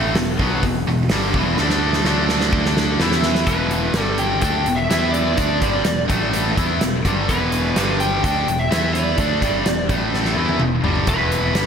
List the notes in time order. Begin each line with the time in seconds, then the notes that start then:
Already playing: A1 A2 E3 A3
0.15 E1 E2 B2, snare, open hi-hat
0.39 B1 B2 F#3 B3, kick
0.63 E1 E2 B2, kick, open hi-hat
0.87 E1 E2 B2
1.09 G1 G2 D3 G3, snare, open hi-hat
1.34 E1 E2 B2 E3, kick
1.57 D2 D3 A3 D4, snare
1.70 snare
1.93 snare
2.04 D2 D3 A3 D4, snare
2.29 snare
2.41 snare
2.53 kick
2.65 snare
2.77 snare
3.00 E2 E3 B3 E4, snare
3.11 snare
3.23 snare
3.35 snare
3.47 E1 E2 B2 E3 B4, kick, closed hi-hat
3.71 closed hi-hat
3.93 G1 G2 D3 G3, snare, closed hi-hat
4.03 A4
4.18 G5, closed hi-hat
4.42 D2 D3 A3 D4 G5, kick, closed hi-hat
4.66 E1 E2 B2, closed hi-hat
4.76 E5
4.90 E2 E3 B3 E4, snare, closed hi-hat
5.11 D5, closed hi-hat
5.37 D2 D3 A3 D4, kick, closed hi-hat
5.61 G1 G2 D3 G3, kick, closed hi-hat
5.85 E1 E2 B2, snare, closed hi-hat
6.08 A1 A2 E3 A3, kick, closed hi-hat
6.33 closed hi-hat
6.56 E2 E3 B3 E4, kick, closed hi-hat
6.81 E1 E2 B2, snare, closed hi-hat
7.05 G1 G2 D3 G3, kick, closed hi-hat
7.29 E1 E2 B2 E3 B4, kick, closed hi-hat
7.52 closed hi-hat
7.76 G1 G2 D3 G3, snare, closed hi-hat
8.00 G5, closed hi-hat
8.24 D2 D3 A3 D4 G5, kick, closed hi-hat
8.47 E1 E2 B2, closed hi-hat
8.59 E5
8.71 E2 E3 B3 E4, snare, closed hi-hat
8.94 D5, closed hi-hat
9.18 D2 D3 A3 D4, kick, closed hi-hat
9.42 G1 G2 D3 G3, kick, closed hi-hat
9.66 E1 E2 B2, snare, closed hi-hat
9.89 A1 A2 E3 A3, kick, closed hi-hat
10.14 snare
10.25 snare
10.36 E2 E3 B3 E4
10.49 high tom
10.60 E1 E2 B2, mid tom
10.83 G1 G2 D3 G3, floor tom
10.95 floor tom
11.07 E1 E2 B2 E3 B4, kick, closed hi-hat
11.32 closed hi-hat
11.54 G1 G2 D3 G3, snare, closed hi-hat